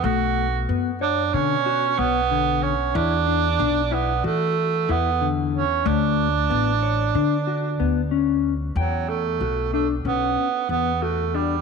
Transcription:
<<
  \new Staff \with { instrumentName = "Clean electric guitar" } { \time 9/8 \key e \dorian \tempo 4. = 62 a4 b8 cis''8 d8 fis'8 b8 d4 | e'8 d'8 d'8 e'8 fis'4 e'8 d4 | a4 b8 cis''8 d'8 fis'8 b8 cis'4 | g''4 fis'8 d'8 cis'4 b8 fis'8 d'8 | }
  \new Staff \with { instrumentName = "Tenor saxophone" } { \time 9/8 \key e \dorian fis'4 r8 d'8 cis'4 b4 cis'8 | d'4. b8 a4 b8 r8 cis'8 | d'2.~ d'8 r4 | fis8 a4 a8 b4 b8 a8 g8 | }
  \new Staff \with { instrumentName = "Upright bass" } { \clef bass \time 9/8 \key e \dorian b,,4 fis,4 b,4 b,,4. | e,4 b,,4 e4 e,4. | d,4 a,,4 d4 d,4. | e,4 b,,4 b,,8 r8 e,4. | }
>>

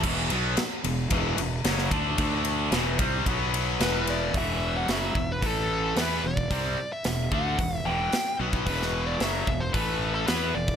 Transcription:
<<
  \new Staff \with { instrumentName = "Lead electric guitar" } { \time 4/4 \key e \minor \tempo 4 = 111 r1 | r2. b'8 d''8 | e''8. fis''16 e''8. b'16 a'4 b'8 d''8~ | d''8. e''8. fis''4 g''4 r8 |
b'8. d''16 e''8. c''16 b'8. a'16 b'8 d''8 | }
  \new Staff \with { instrumentName = "Distorted electric guitar" } { \clef bass \time 4/4 \key e \minor <e, b, e>8 <b, fis b>8 r8 <e, b,>8 <e, b, e>8 <e, b,>8 <fis, cis fis>8 <d a d'>8 | <d a d'>4 <e, b, e>8 <c g c'>8 <b, fis b>4 <e, b, e>4 | <e, b, e>4 <fis, cis fis>8 <e, b,>8 <a, e a>4 <e b e'>8 <e, b,>8 | <c g c'>8 r8 <e, b,>8 <d a d'>8 <e, b,>8 <e, b, e>8 r8 <b, fis b>8 |
<e, b, e>4 <fis, cis fis>8 <e, b,>8 <a, e a>4 <e b e'>8 <e, b,>8 | }
  \new Staff \with { instrumentName = "Overdriven electric guitar" } { \clef bass \time 4/4 \key e \minor <e, b, e>8 <b, fis b>8 r8 <e, b,>8 <e, b, e>8 <e, b,>8 <fis, cis fis>8 <d a d'>8 | <d a d'>4 <e, b, e>8 <c g c'>8 <b, fis b>4 <e, b, e>4 | <e, b, e>4 <fis, cis fis>8 <e, b,>8 <a, e a>4 <e b e'>8 <e, b,>8 | <c g c'>8 r8 <e, b,>8 <d a d'>8 <e, b,>8 <e, b, e>8 r8 <b, fis b>8 |
<e, b, e>4 <fis, cis fis>8 <e, b,>8 <a, e a>4 <e b e'>8 <e, b,>8 | }
  \new Staff \with { instrumentName = "Fingered electric bass" } { \clef bass \time 4/4 \key e \minor e,,8 b,,8 r8 e,,8 e,,8 e,,8 fis,,8 d,8 | d,4 e,,8 c,8 b,,4 e,,4 | e,,4 fis,,8 e,,8 a,,4 e,8 e,,8 | c,8 r8 e,,8 d,8 e,,8 e,,8 r8 b,,8 |
e,,4 fis,,8 e,,8 a,,4 e,8 e,,8 | }
  \new DrumStaff \with { instrumentName = "Drums" } \drummode { \time 4/4 <cymc bd>8 cymr8 <cymr sn>8 cymr8 <bd cymr>8 cymr8 <cymr sn>16 sn16 <bd cymr>8 | <bd cymr>8 cymr8 <cymr sn>8 <bd cymr>8 <bd cymr>8 cymr8 <cymr sn>8 cymr8 | <hho bd>4 <hho sn>8 bd8 <hho bd>4 <hho sn>8. bd16 | <hho bd>4 <hho sn>8 bd8 <hho bd>4 <hho sn>8. bd16 |
<hho bd>16 sn8. <hho sn>8 bd8 <hho bd>4 <hho sn>8. bd16 | }
>>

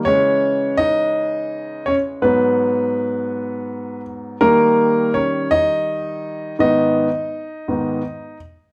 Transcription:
<<
  \new Staff \with { instrumentName = "Grand piano" } { \time 6/8 \key gis \minor \tempo 4. = 55 <cis' cis''>4 <dis' dis''>4. <cis' cis''>8 | <b b'>2~ <b b'>8 r8 | ais'4 <cis' cis''>8 <dis' dis''>4. | <dis' dis''>2~ <dis' dis''>8 r8 | }
  \new Staff \with { instrumentName = "Grand piano" } { \clef bass \time 6/8 \key gis \minor <cis e gis>2. | <gis, fis>2. | <dis g ais>2. | <gis, dis b>8 r4 <gis, dis b>8 r4 | }
>>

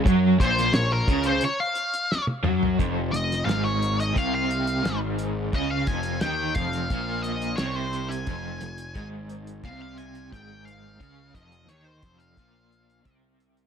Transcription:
<<
  \new Staff \with { instrumentName = "Lead electric guitar" } { \time 4/4 \key f \phrygian \tempo 4 = 88 r8 c''8 des''16 bes'8 c''16 des''16 f''4 r8. | r8 ees''8 f''16 des''8 ees''16 f''16 f''4 r8. | ees''16 f''16 aes''8 g''8 f''4 ees''8 des''16 c''8 aes''16~ | aes''4~ aes''16 r8. f''16 f''16 aes''8 g''8 f''8~ |
f''8 ees''8 des''16 c''8 f''4. r8. | }
  \new Staff \with { instrumentName = "Overdriven electric guitar" } { \clef bass \time 4/4 \key f \phrygian ges8 bes,8 bes,8 des8 r4. ges8 | f,8 f,8 aes,4 c4 aes,4 | des8 f,8 ees8 f,8 bes,4 c4 | f,8 f,8 aes,4 c4 aes,4 |
des8 f,8 ees8 f,8 bes,4 c4 | }
  \new Staff \with { instrumentName = "Picked electric bass" } { \clef bass \time 4/4 \key f \phrygian ges,8 bes,,8 bes,,8 des,8 r4. ges,8 | f,,8 f,,8 aes,,4 c,4 aes,,4 | des,8 f,,8 ees,8 f,,8 bes,,4 c,4 | f,,8 f,,8 aes,,4 c,4 aes,,4 |
des,8 f,,8 ees,8 f,,8 bes,,4 c,4 | }
  \new DrumStaff \with { instrumentName = "Drums" } \drummode { \time 4/4 <hh bd>8 <hh bd>16 <hh sn>16 <hh sn>8 <hh bd>16 hh16 hh8 hh16 hh16 sn16 tommh16 toml16 tomfh16 | <hh bd>8 hh16 <hh sn>16 <hh sn>8 hh16 hh16 <hh bd>8 hh16 hh16 <hh sn>8 hh8 | <hh bd>8 <hh bd>16 hh16 <hh sn>8 <hh bd>16 hh16 <hh bd>8 hh16 hh16 <hh sn>8 hh16 hh16 | <hh bd>8 hh16 hh16 <hh bd>8 hh16 hh16 <hh bd>8 hh16 hh16 <hh bd>8 hh8 |
<hh bd>8 <hh bd>16 hh16 hh8 <hh bd>16 hh16 <hh bd>8 hh16 hh16 <hh bd>8 hh16 hh16 | }
>>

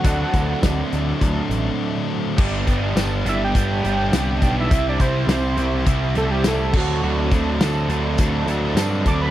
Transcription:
<<
  \new Staff \with { instrumentName = "Tonewheel organ" } { \time 4/4 \key g \major \tempo 4 = 103 <a' d'' fis'' c'''>1 | r1 | r1 | r1 | }
  \new Staff \with { instrumentName = "Analog synth lead" } { \time 4/4 \key g \major fis''4. r2 r8 | r4. e''16 g''2 e''16~ | e''16 d''16 c''8 c''4 r8 a'16 g'16 a'8 fis'8~ | fis'8 r2. d'''16 b''16 | }
  \new Staff \with { instrumentName = "Overdriven electric guitar" } { \time 4/4 \key g \major <fis c' d' a'>1 | <g b d' g'>8 <g b d' g'>8 <g b d' g'>8 <g b d' g'>8 <g b d' g'>8 <g b d' g'>8 <g b d' g'>8 <g b d' g'>8 | <g c' e' g'>8 <g c' e' g'>8 <g c' e' g'>8 <g c' e' g'>8 <g c' e' g'>8 <g c' e' g'>8 <g c' e' g'>8 <fis c' d' a'>8 | <fis c' d' a'>8 <fis c' d' a'>8 <fis c' d' a'>8 <fis c' d' a'>8 <fis c' d' a'>8 <fis c' d' a'>8 <fis c' d' a'>8 <fis c' d' a'>8 | }
  \new Staff \with { instrumentName = "Distorted electric guitar" } { \clef bass \time 4/4 \key g \major <d fis a d'>1 | <g, d g b d'>8 <g, d g b d'>8 <g, d g b d'>8 <g, d g b d'>8 <g, d g b d'>8 <g, d g b d'>8 <g, d g b d'>8 <g, d g b d'>8 | <c g c' e'>8 <c g c' e'>8 <c g c' e'>8 <c g c' e'>8 <c g c' e'>8 <c g c' e'>8 <c g c' e'>8 <d fis a d'>8 | <d fis a d'>8 <d fis a d'>8 <d fis a d'>8 <d fis a d'>8 <d fis a d'>8 <d fis a d'>8 <d fis a d'>8 <d fis a d'>8 | }
  \new Staff \with { instrumentName = "Picked electric bass" } { \clef bass \time 4/4 \key g \major d,8 d,8 d,8 d,8 d,8 a,,8 r4 | g,,8 g,,8 g,,8 g,,8 g,,8 g,,8 c,8 b,,8 | c,8 c,8 c,8 c,8 c,8 c,8 c,8 d,8 | d,8 d,8 d,8 d,8 d,8 d,8 g,8 d,8 | }
  \new DrumStaff \with { instrumentName = "Drums" } \drummode { \time 4/4 <hh bd>8 <hh bd>8 <hh bd sn tamb>8 hh8 <hh bd>8 hh8 r4 | <cymc bd>8 <hh bd>8 <hh sn tamb>8 hh8 <hh bd>8 hh8 <hh sn tamb>8 <hh bd>8 | <hh bd>8 <hh bd>8 <hh sn tamb>8 hh8 <hh bd>8 hh8 <hh sn tamb>8 <cymc bd>8 | r8 <hh bd>8 <hh sn tamb>8 hh8 <hh bd>8 hh8 <hh sn tamb>8 <hh bd>8 | }
>>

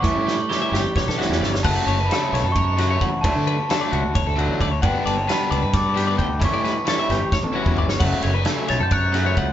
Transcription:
<<
  \new Staff \with { instrumentName = "Glockenspiel" } { \time 7/8 \key fis \phrygian \tempo 4 = 132 cis'''2. r8 | a''8 a''8 b''4 cis'''4. | a''4 a''2 r8 | g''8 a''8 b''4 d'''4. |
cis'''4 cis'''2 r8 | r4. a'''16 g'''16 fis'''4. | }
  \new Staff \with { instrumentName = "Clean electric guitar" } { \time 7/8 \key fis \phrygian e''16 d''16 b'8 a'16 e''16 g'8 cis''16 a'16 fis'8 d''16 cis''16 | fis''8 cis''16 b'16 a'8 cis''16 a'16 cis''8 fis'16 cis''16 fis''8 | e''16 d''16 b'8 a'16 d''16 fis'8 cis''16 a'16 fis'8 d''16 cis''16 | fis''8 d''16 cis''16 b'8 d''16 b'16 d''8 g'16 d''16 g''8 |
e''16 d''16 b'8 a'16 e''16 g'8 cis''16 a'16 fis'8 d''16 cis''16 | fis''8 cis''16 b'16 a'8 cis''16 a'16 cis''8 fis'16 cis''16 fis''8 | }
  \new Staff \with { instrumentName = "Overdriven electric guitar" } { \clef bass \time 7/8 \key fis \phrygian <e g cis' e'>8 r8 <e g cis' e'>8 r4 <e g cis' e'>8 r8 | <cis fis a cis'>8 r8 <cis fis a cis'>8 r4 <cis fis a cis'>8 r8 | <d fis a d'>8 r8 <d fis a d'>8 r4 <d fis a d'>8 r8 | <d g b d'>8 r8 <d g b d'>8 r4 <d g b d'>8 r8 |
<e g cis' e'>8 r8 <e g cis' e'>8 r4 <e g cis' e'>8 r8 | <cis fis a cis'>8 r8 <cis fis a cis'>8 r4 <cis fis a cis'>8 r8 | }
  \new Staff \with { instrumentName = "Clean electric guitar" } { \clef bass \time 7/8 \key fis \phrygian << { r8 g8 g'8 g2 | r2. r8 | r2. r8 | r2. r8 |
r2. r8 | r2. r8 | } \\ { a,2 b,8 a,8 g,8 | r2. r8 | r2. r8 | r2. r8 |
r2. r8 | r2. r8 | } >> }
  \new Staff \with { instrumentName = "Fingered electric bass" } { \clef bass \time 7/8 \key fis \phrygian a,,16 a,8 r8. g,,16 a,,8 a,,8 e,16 g,,8 | fis,,16 r16 fis,,8 r8 b,,16 fis,4~ fis,16 a,,8 | d,16 d8 r8. cis,16 d,8 d,8 a,,16 d,8 | g,,16 r16 g,,8 r8 cis,16 g,4~ g,16 d,8 |
a,,16 a,8 r8. g,,16 a,,8 a,,8 e,16 g,,8 | fis,,16 r16 fis,,8 r8 b,,16 fis,4~ fis,16 cis,8 | }
  \new DrumStaff \with { instrumentName = "Drums" } \drummode { \time 7/8 <hh bd>8 sn8 sn8 sn8 <bd sn>16 sn16 sn16 sn16 sn16 sn16 | <cymc bd>8 cymr8 <cymr sn>8 <cymr sn>8 <bd cymr>8 <cymr sn>8 <bd cymr>8 | <bd cymr>8 cymr8 <cymr sn>8 cymr8 <bd cymr>8 cymr8 <bd cymr>8 | <bd cymr>8 cymr8 <cymr sn>8 cymr8 <bd cymr sn>8 <cymr sn>8 <bd cymr>8 |
<bd cymr>8 <cymr sn>8 <cymr sn>8 <cymr sn>8 <bd sn>16 tommh8 bd16 tomfh16 sn16 | <cymc bd>8 cymr8 <cymr sn>8 <cymr sn>8 <bd cymr>8 <cymr sn>8 <bd cymr>8 | }
>>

